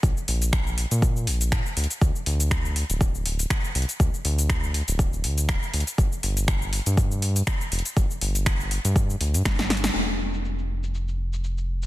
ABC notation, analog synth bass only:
X:1
M:4/4
L:1/16
Q:"Swing 16ths" 1/4=121
K:Gphr
V:1 name="Analog synth bass" clef=bass
B,,, z B,,,4- B,,, B,,3 B,,,2 B,, z D,, z | D,, z D,,4- D,, D,,,4- D,,, z2 C,, z | D,, z D,,4- D,, D,,,3 D,,2 D,,, z D,, z | G,,, z G,,,4- G,,, G,,4- G,, z2 F,,, z |
G,,, z G,,,4- G,,, G,,3 D,, G,, G,,,4 | F,,,16 |]